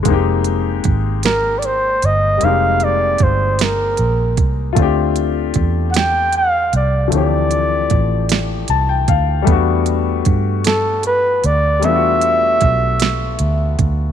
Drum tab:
HH |xxxxxx|xxxxxx|xxxxxx|xxxxxx|
SD |---o--|---o--|---o--|---o--|
BD |o-o---|--o--o|o-o---|--o--o|

HH |xxxxxx|xxxxxx|
SD |---o--|---o--|
BD |o-o---|--o--o|